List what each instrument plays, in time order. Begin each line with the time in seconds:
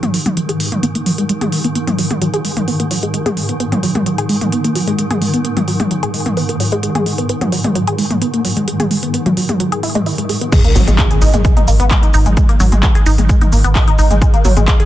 Already playing: synth drone G#2 D#3
0.03 synth arpeggio sound F#3, closed hi-hat, mid tom
0.14 synth arpeggio sound F#3, open hi-hat
0.26 synth arpeggio sound G#3, closed hi-hat, mid tom
0.37 synth arpeggio sound F#3, closed hi-hat
0.49 synth arpeggio sound G#4, closed hi-hat
0.60 synth arpeggio sound G#3, open hi-hat
0.72 synth arpeggio sound A#3, closed hi-hat, mid tom
0.83 synth arpeggio sound B3, closed hi-hat
0.95 synth arpeggio sound A#3, closed hi-hat
1.06 synth arpeggio sound F#3, open hi-hat
1.18 synth arpeggio sound G#3, closed hi-hat
1.29 synth arpeggio sound G#3, closed hi-hat
1.41 synth arpeggio sound G#4, closed hi-hat, mid tom
1.52 synth arpeggio sound G#3, open hi-hat
1.64 synth arpeggio sound B3, closed hi-hat
1.75 synth arpeggio sound B3, closed hi-hat
1.87 synth arpeggio sound F#3, closed hi-hat, mid tom
1.99 synth arpeggio sound F#3, open hi-hat
2.11 synth arpeggio sound G#3, closed hi-hat, mid tom
2.22 synth arpeggio sound F#3, closed hi-hat
2.34 synth arpeggio sound G#4, closed hi-hat
2.45 synth arpeggio sound G#3, open hi-hat
2.57 synth arpeggio sound A#3, closed hi-hat, mid tom
2.68 synth arpeggio sound B3, open hi-hat
2.80 synth arpeggio sound A#3, closed hi-hat
2.91 synth arpeggio sound F#3, open hi-hat
3.03 synth arpeggio sound G#3, closed hi-hat
3.14 synth arpeggio sound G#3, closed hi-hat
3.26 synth arpeggio sound G#4, closed hi-hat, mid tom
3.37 synth arpeggio sound G#3, open hi-hat
3.49 synth arpeggio sound B3, closed hi-hat
3.60 synth arpeggio sound B3, closed hi-hat
3.72 synth arpeggio sound F#3, closed hi-hat, mid tom
3.83 synth arpeggio sound F#3, open hi-hat
3.95 synth arpeggio sound G#3, closed hi-hat, mid tom
4.06 synth arpeggio sound F#3, closed hi-hat
4.18 synth arpeggio sound G#4, closed hi-hat
4.29 synth arpeggio sound G#3, open hi-hat
4.41 synth arpeggio sound A#3, closed hi-hat, mid tom
4.52 synth arpeggio sound B3, closed hi-hat
4.64 synth arpeggio sound A#3, closed hi-hat
4.75 synth arpeggio sound F#3, open hi-hat
4.88 synth arpeggio sound G#3, closed hi-hat
4.99 synth arpeggio sound G#3, closed hi-hat
5.11 synth arpeggio sound G#4, closed hi-hat, mid tom
5.22 synth arpeggio sound G#3, open hi-hat
5.34 synth arpeggio sound B3, closed hi-hat
5.45 synth arpeggio sound B3, closed hi-hat
5.57 synth arpeggio sound F#3, closed hi-hat, mid tom
5.68 synth arpeggio sound F#3, open hi-hat
5.80 synth arpeggio sound G#3, closed hi-hat, mid tom
5.91 synth arpeggio sound F#3, closed hi-hat
6.03 synth arpeggio sound G#4, closed hi-hat
6.14 synth arpeggio sound G#3, open hi-hat
6.26 synth arpeggio sound A#3, closed hi-hat, mid tom
6.37 synth arpeggio sound B3, open hi-hat
6.49 synth arpeggio sound A#3, closed hi-hat
6.60 synth arpeggio sound F#3, open hi-hat
6.72 synth arpeggio sound G#3, closed hi-hat
6.83 synth arpeggio sound G#3, closed hi-hat
6.95 synth arpeggio sound G#4, closed hi-hat, mid tom
7.06 synth arpeggio sound G#3, open hi-hat
7.18 synth arpeggio sound B3, closed hi-hat
7.29 synth arpeggio sound B3, closed hi-hat
7.41 synth arpeggio sound F#3, closed hi-hat, mid tom
7.52 synth arpeggio sound F#3, open hi-hat
7.64 synth arpeggio sound G#3, closed hi-hat, mid tom
7.75 synth arpeggio sound F#3, closed hi-hat
7.87 synth arpeggio sound G#4, closed hi-hat
7.99 synth arpeggio sound G#3, open hi-hat
8.11 synth arpeggio sound A#3, closed hi-hat, mid tom
8.22 synth arpeggio sound B3, closed hi-hat
8.34 synth arpeggio sound A#3, closed hi-hat
8.45 synth arpeggio sound F#3, open hi-hat
8.57 synth arpeggio sound G#3, closed hi-hat
8.68 synth arpeggio sound G#3, closed hi-hat
8.80 synth arpeggio sound G#4, closed hi-hat, mid tom
8.91 synth arpeggio sound G#3, open hi-hat
9.03 synth arpeggio sound B3, closed hi-hat
9.14 synth arpeggio sound B3, closed hi-hat
9.26 synth arpeggio sound F#3, closed hi-hat, mid tom
9.37 synth arpeggio sound F#3, open hi-hat
9.49 synth arpeggio sound G#3, closed hi-hat, mid tom
9.60 synth arpeggio sound F#3, closed hi-hat
9.72 synth arpeggio sound G#4, closed hi-hat
9.83 synth arpeggio sound E4, open hi-hat
9.95 synth arpeggio sound G#3, closed hi-hat, mid tom
10.06 synth arpeggio sound E4, open hi-hat
10.18 synth arpeggio sound G#3, closed hi-hat
10.29 synth arpeggio sound G#3, open hi-hat
10.41 synth arpeggio sound B3, closed hi-hat
10.52 synth drone G#2 D#3, synth arpeggio sound G#3, kick, closed hi-hat, crash, impact, shaker
10.64 synth arpeggio sound A#3, closed hi-hat, shaker
10.75 sub bass G#1, synth arpeggio sound F#3, open hi-hat, mid tom, shaker
10.87 sub bass G#1, synth arpeggio sound G#3, closed hi-hat, mid tom, shaker
10.99 synth arpeggio sound G#3, kick, clap, closed hi-hat, shaker
11.11 synth arpeggio sound G#4, closed hi-hat, shaker
11.22 sub bass G#1, synth arpeggio sound D#4, open hi-hat, shaker
11.34 sub bass G#1, synth arpeggio sound G#3, closed hi-hat, mid tom, shaker
11.45 synth arpeggio sound G#3, kick, closed hi-hat, shaker
11.57 synth arpeggio sound D#4, closed hi-hat, mid tom, shaker
11.68 sub bass G#1, synth arpeggio sound A#3, open hi-hat, shaker
11.80 sub bass G#1, synth arpeggio sound B3, closed hi-hat, shaker
11.91 synth arpeggio sound G#3, kick, clap, closed hi-hat, shaker
12.03 synth arpeggio sound D#4, closed hi-hat, shaker
12.14 sub bass G#1, synth arpeggio sound D#4, open hi-hat, shaker
12.26 sub bass G#1, synth arpeggio sound G#3, closed hi-hat, mid tom, shaker
12.37 synth arpeggio sound G#3, kick, closed hi-hat, shaker
12.49 synth arpeggio sound A#3, closed hi-hat, shaker
12.60 sub bass G#1, synth arpeggio sound F#3, open hi-hat, mid tom, shaker
12.72 sub bass G#1, synth arpeggio sound G#3, closed hi-hat, mid tom, shaker
12.83 synth arpeggio sound G#3, kick, clap, closed hi-hat, shaker
12.95 synth arpeggio sound G#4, closed hi-hat, shaker
13.06 sub bass G#1, synth arpeggio sound D#4, open hi-hat, shaker
13.18 sub bass G#1, synth arpeggio sound G#3, closed hi-hat, mid tom, shaker
13.29 synth arpeggio sound G#3, kick, closed hi-hat, shaker
13.41 synth arpeggio sound D#4, closed hi-hat, mid tom, shaker
13.52 sub bass G#1, synth arpeggio sound A#3, open hi-hat, shaker
13.64 sub bass G#1, synth arpeggio sound B3, closed hi-hat, shaker
13.75 synth arpeggio sound G#3, kick, clap, open hi-hat, shaker
13.88 synth arpeggio sound D#4, closed hi-hat, shaker
13.99 sub bass G#1, synth arpeggio sound D#4, open hi-hat, shaker
14.11 sub bass G#1, synth arpeggio sound G#3, closed hi-hat, mid tom, shaker
14.22 synth arpeggio sound G#3, kick, closed hi-hat, shaker
14.34 synth arpeggio sound A#3, closed hi-hat, shaker
14.45 sub bass G#1, synth arpeggio sound F#3, open hi-hat, mid tom, shaker
14.57 sub bass G#1, synth arpeggio sound G#3, closed hi-hat, mid tom, shaker
14.68 synth arpeggio sound G#3, kick, clap, closed hi-hat, shaker
14.80 synth arpeggio sound G#4, closed hi-hat, shaker